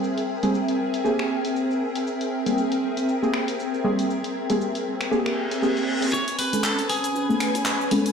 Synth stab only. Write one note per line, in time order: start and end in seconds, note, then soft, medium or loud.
0.43 0.57 G3 medium
0.43 0.57 A#3 medium
0.43 0.57 C4 medium
0.43 0.57 G#4 loud
1.04 2.43 A#3 medium
1.04 2.43 C4 medium
1.04 2.43 G4 medium
1.04 2.43 G#4 loud
2.46 2.61 G3 medium
2.46 2.61 A#3 medium
2.46 2.61 C4 medium
2.46 2.61 G#4 medium
3.22 3.82 A#3 medium
3.22 3.82 C4 medium
3.22 3.82 G4 medium
3.22 3.82 G#4 medium
3.84 4.09 G3 loud
3.84 4.09 A#3 medium
3.84 4.10 C4 medium
3.84 4.10 G#4 loud
4.50 4.64 G3 medium
4.50 4.64 A#3 medium
4.50 4.64 C4 medium
4.50 4.64 G#4 medium
5.11 5.60 A#3 medium
5.11 5.60 C4 medium
5.11 5.60 G4 medium
5.11 5.60 G#4 loud
5.62 6.12 A#3 medium
5.62 6.12 C4 medium
5.62 6.12 G4 medium
5.62 6.12 G#4 medium
6.53 6.67 G#3 medium
6.53 6.67 B3 medium
6.53 6.67 C#4 medium
6.53 6.68 A4 medium
7.29 7.89 A3 medium
7.29 7.88 B3 medium
7.29 7.89 C#4 medium
7.29 7.88 G#4 medium
7.91 8.12 G#3 loud
7.91 8.12 B3 medium
7.91 8.12 C#4 medium
7.91 8.12 A4 loud